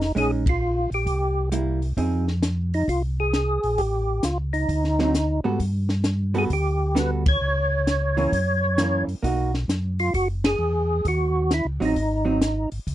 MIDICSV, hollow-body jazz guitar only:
0, 0, Header, 1, 2, 480
1, 0, Start_track
1, 0, Tempo, 453515
1, 169, Time_signature, 4, 2, 24, 8
1, 13705, End_track
2, 0, Start_track
2, 0, Title_t, "Hollow-body jazz guitar"
2, 0, Program_c, 0, 26
2, 158, Note_on_c, 0, 56, 59
2, 170, Note_on_c, 0, 61, 58
2, 176, Note_on_c, 0, 63, 62
2, 451, Note_off_c, 0, 56, 0
2, 457, Note_off_c, 0, 61, 0
2, 460, Note_off_c, 0, 63, 0
2, 1606, Note_on_c, 0, 55, 46
2, 1618, Note_on_c, 0, 58, 46
2, 1622, Note_on_c, 0, 64, 57
2, 1895, Note_off_c, 0, 55, 0
2, 1900, Note_off_c, 0, 58, 0
2, 1902, Note_off_c, 0, 64, 0
2, 2089, Note_on_c, 0, 53, 42
2, 2091, Note_on_c, 0, 60, 44
2, 2096, Note_on_c, 0, 63, 46
2, 2101, Note_on_c, 0, 68, 51
2, 2376, Note_off_c, 0, 53, 0
2, 2377, Note_off_c, 0, 60, 0
2, 2379, Note_off_c, 0, 63, 0
2, 2382, Note_off_c, 0, 68, 0
2, 5287, Note_on_c, 0, 50, 62
2, 5292, Note_on_c, 0, 54, 65
2, 5296, Note_on_c, 0, 60, 63
2, 5300, Note_on_c, 0, 63, 67
2, 5430, Note_off_c, 0, 50, 0
2, 5433, Note_off_c, 0, 54, 0
2, 5435, Note_off_c, 0, 60, 0
2, 5437, Note_off_c, 0, 63, 0
2, 5760, Note_on_c, 0, 59, 63
2, 5762, Note_on_c, 0, 55, 63
2, 5770, Note_on_c, 0, 66, 65
2, 5774, Note_on_c, 0, 69, 69
2, 5907, Note_off_c, 0, 59, 0
2, 5908, Note_off_c, 0, 55, 0
2, 5912, Note_off_c, 0, 66, 0
2, 5914, Note_off_c, 0, 69, 0
2, 6714, Note_on_c, 0, 55, 67
2, 6717, Note_on_c, 0, 59, 73
2, 6725, Note_on_c, 0, 66, 76
2, 6728, Note_on_c, 0, 69, 82
2, 6864, Note_off_c, 0, 55, 0
2, 6866, Note_off_c, 0, 59, 0
2, 6870, Note_off_c, 0, 66, 0
2, 6871, Note_off_c, 0, 69, 0
2, 7356, Note_on_c, 0, 55, 55
2, 7360, Note_on_c, 0, 59, 51
2, 7365, Note_on_c, 0, 66, 60
2, 7366, Note_on_c, 0, 69, 57
2, 7649, Note_off_c, 0, 55, 0
2, 7651, Note_off_c, 0, 59, 0
2, 7654, Note_off_c, 0, 66, 0
2, 7654, Note_off_c, 0, 69, 0
2, 8647, Note_on_c, 0, 52, 74
2, 8654, Note_on_c, 0, 58, 65
2, 8660, Note_on_c, 0, 61, 77
2, 8791, Note_off_c, 0, 52, 0
2, 8795, Note_off_c, 0, 58, 0
2, 8798, Note_off_c, 0, 61, 0
2, 9293, Note_on_c, 0, 52, 55
2, 9307, Note_on_c, 0, 58, 58
2, 9311, Note_on_c, 0, 61, 57
2, 9579, Note_off_c, 0, 52, 0
2, 9586, Note_off_c, 0, 58, 0
2, 9588, Note_off_c, 0, 61, 0
2, 9764, Note_on_c, 0, 58, 64
2, 9778, Note_on_c, 0, 63, 61
2, 9783, Note_on_c, 0, 66, 68
2, 10054, Note_off_c, 0, 58, 0
2, 10061, Note_off_c, 0, 63, 0
2, 10064, Note_off_c, 0, 66, 0
2, 12491, Note_on_c, 0, 54, 65
2, 12502, Note_on_c, 0, 60, 70
2, 12508, Note_on_c, 0, 63, 82
2, 12636, Note_off_c, 0, 54, 0
2, 12642, Note_off_c, 0, 60, 0
2, 12644, Note_off_c, 0, 63, 0
2, 12963, Note_on_c, 0, 54, 58
2, 12969, Note_on_c, 0, 60, 64
2, 12973, Note_on_c, 0, 63, 64
2, 13112, Note_off_c, 0, 54, 0
2, 13115, Note_off_c, 0, 60, 0
2, 13117, Note_off_c, 0, 63, 0
2, 13705, End_track
0, 0, End_of_file